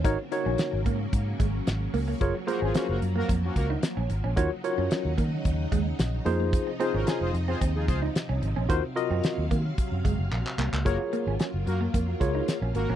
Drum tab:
HH |x-x-x-x-x-x-x-o-|x-x-x-x-x-x-x-x-|x-x-x-x-x-x-x-x-|x-x-x-x-x-x-x-x-|
CP |----------------|----------------|----------------|----------------|
SD |----o-------o---|----o-------o---|----o-------o---|----o-------o---|
BD |o-----o-o-o-----|o-------o-o-----|o-----o-o-o-----|o-------o-o-----|

HH |x-x-x-x-x-x-----|x-x-x-x-x-x-x-x-|
CP |------------xxxx|----------------|
SD |----o-----------|----o-------o---|
BD |o-----o-o-o-----|o-------o-o-----|